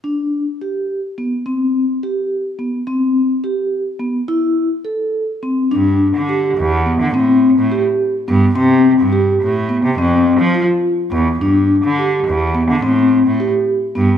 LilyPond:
<<
  \new Staff \with { instrumentName = "Vibraphone" } { \time 5/8 \key g \major \tempo 4 = 106 d'4 g'4 b8 | c'4 g'4 b8 | c'4 g'4 b8 | e'4 a'4 c'8 |
d'4 g'4 b8 | c'4 g'4 b8 | c'4 g'4 b8 | c'4 f'4 b8 |
d'4 g'4 b8 | c'4 g'4 b8 | }
  \new Staff \with { instrumentName = "Cello" } { \clef bass \time 5/8 \key g \major r2 r8 | r2 r8 | r2 r8 | r2 r8 |
g,8. d8. e,8. d16 | a,8. a,8 r8. g,8 | c8. g,8. a,8. c16 | f,8. f8 r8. e,8 |
g,8. d8. e,8. d16 | a,8. a,8 r8. g,8 | }
>>